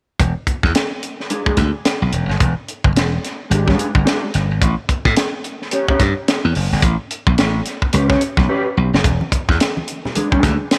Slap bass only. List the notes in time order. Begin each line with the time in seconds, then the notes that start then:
0.20 E1
0.47 muted slap bass stroke
0.64 E2
1.46 muted slap bass stroke
1.58 D2
2.02 B1
2.13 E1
2.29 G1
2.41 E1
2.84 G1
2.96 E1
3.51 G#1
3.95 G1
4.35 G1
4.51 G#1
4.62 A1
4.89 muted slap bass stroke
5.05 A2
5.89 muted slap bass stroke
6.00 G2
6.45 E2
6.56 F#1
6.72 G1
6.82 A1
7.27 B1
7.39 A1
7.94 C#2
8.38 B1
8.77 B1
8.93 F#1
9.05 E1
9.32 muted slap bass stroke
9.49 E2
10.32 muted slap bass stroke
10.43 D2